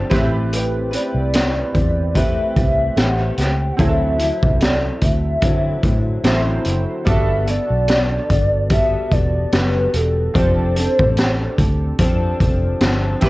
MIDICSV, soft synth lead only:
0, 0, Header, 1, 2, 480
1, 0, Start_track
1, 0, Tempo, 819672
1, 302, Time_signature, 4, 2, 24, 8
1, 7785, End_track
2, 0, Start_track
2, 0, Title_t, "Soft synth lead"
2, 0, Program_c, 0, 80
2, 305, Note_on_c, 0, 71, 85
2, 551, Note_on_c, 0, 74, 96
2, 559, Note_off_c, 0, 71, 0
2, 1265, Note_on_c, 0, 76, 87
2, 1273, Note_off_c, 0, 74, 0
2, 1499, Note_off_c, 0, 76, 0
2, 1502, Note_on_c, 0, 76, 97
2, 1744, Note_on_c, 0, 78, 108
2, 1752, Note_off_c, 0, 76, 0
2, 1979, Note_on_c, 0, 79, 93
2, 1988, Note_off_c, 0, 78, 0
2, 2182, Note_on_c, 0, 78, 82
2, 2191, Note_off_c, 0, 79, 0
2, 2222, Note_on_c, 0, 76, 117
2, 2231, Note_off_c, 0, 78, 0
2, 2703, Note_on_c, 0, 74, 92
2, 2711, Note_off_c, 0, 76, 0
2, 2942, Note_on_c, 0, 76, 88
2, 2950, Note_off_c, 0, 74, 0
2, 3902, Note_off_c, 0, 76, 0
2, 4144, Note_on_c, 0, 76, 112
2, 4386, Note_on_c, 0, 74, 115
2, 4394, Note_off_c, 0, 76, 0
2, 5106, Note_on_c, 0, 76, 106
2, 5115, Note_off_c, 0, 74, 0
2, 5344, Note_on_c, 0, 74, 97
2, 5353, Note_off_c, 0, 76, 0
2, 5592, Note_on_c, 0, 71, 97
2, 5601, Note_off_c, 0, 74, 0
2, 5832, Note_on_c, 0, 69, 78
2, 5841, Note_off_c, 0, 71, 0
2, 6068, Note_off_c, 0, 69, 0
2, 6077, Note_on_c, 0, 72, 101
2, 7008, Note_off_c, 0, 72, 0
2, 7785, End_track
0, 0, End_of_file